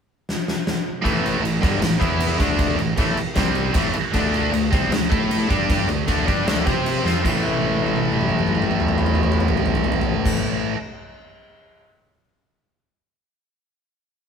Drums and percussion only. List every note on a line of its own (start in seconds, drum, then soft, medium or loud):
0.29 snare medium
0.48 snare medium
0.67 snare medium
1.05 kick medium
1.05 crash medium
1.26 crash medium
1.45 crash medium
1.63 kick loud
1.63 crash medium
1.82 snare loud
1.82 crash medium
2.01 kick loud
2.01 crash medium
2.20 crash medium
2.40 kick loud
2.40 crash medium
2.59 kick loud
2.59 crash medium
2.79 crash medium
2.97 kick loud
2.97 crash medium
3.17 crash medium
3.35 kick loud
3.35 snare loud
3.35 crash medium
3.55 crash medium
3.74 kick loud
3.74 crash medium
3.93 crash medium
4.13 kick loud
4.13 crash medium
4.34 crash medium
4.54 crash medium
4.73 kick loud
4.73 crash medium
4.92 snare loud
4.92 crash medium
5.12 kick loud
5.12 crash medium
5.31 crash medium
5.50 kick loud
5.50 crash medium
5.70 kick loud
5.70 crash medium
5.88 crash medium
6.08 kick loud
6.08 crash medium
6.28 kick loud
6.28 crash medium
6.47 snare loud
6.47 crash medium
6.67 kick loud
6.67 crash medium
6.86 crash medium
7.06 snare medium
7.25 kick loud
7.25 crash loud
7.45 high tom soft
7.53 high tom soft
7.62 high tom soft
7.70 high tom soft
7.79 high tom medium
7.87 high tom medium
7.96 high tom medium
8.05 high tom soft
8.12 mid tom medium
8.21 mid tom medium
8.29 mid tom medium
8.39 mid tom medium
8.47 mid tom medium
8.55 mid tom medium
8.62 mid tom medium
8.71 mid tom medium
8.80 mid tom medium
8.88 mid tom medium
8.98 mid tom medium
9.06 mid tom medium
9.15 mid tom medium
9.23 mid tom medium
9.32 mid tom medium
9.40 mid tom medium
9.48 floor tom medium
9.57 floor tom medium
9.66 floor tom medium
9.75 floor tom medium
9.84 floor tom medium
9.92 floor tom medium
10.01 floor tom medium
10.25 kick loud
10.25 crash loud